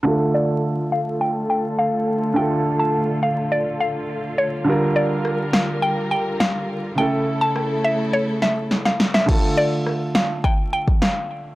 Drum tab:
CC |----------------|----------------|----------------|----------------|
SD |----------------|----------------|----r-o-----o---|----r-----o-oooo|
BD |----------------|----------------|----------------|----------------|

CC |x---------------|
SD |----r-o-----o---|
BD |o-------o--o----|